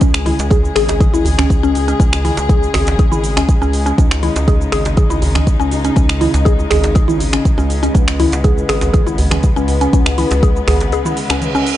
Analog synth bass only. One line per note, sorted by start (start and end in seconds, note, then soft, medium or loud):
0.01 0.33 C#2 loud
0.39 0.70 C#2 medium
0.76 1.07 G#1 loud
1.14 1.45 G#1 medium
1.63 1.94 C#2 medium
2.00 2.31 C#2 loud
2.38 2.69 C#2 medium
2.74 3.06 G#1 loud
3.12 3.43 G#1 medium
3.62 3.93 C#2 medium
3.98 4.30 C#2 loud
4.36 4.67 C#2 medium
4.73 5.04 G#1 loud
5.10 5.41 G#1 loud
5.60 5.91 C#2 medium
5.97 6.28 C#2 loud
6.34 6.65 C#2 medium
6.71 7.02 G#1 loud
7.09 7.40 G#1 medium
7.58 7.89 C#2 medium
7.95 8.27 C#2 loud
8.32 8.64 C#2 medium
8.69 9.01 G#1 loud
9.07 9.38 G#1 medium
9.57 9.88 C#2 medium
9.93 10.25 C#2 loud
10.31 10.62 C#2 medium
10.68 10.92 G#1 loud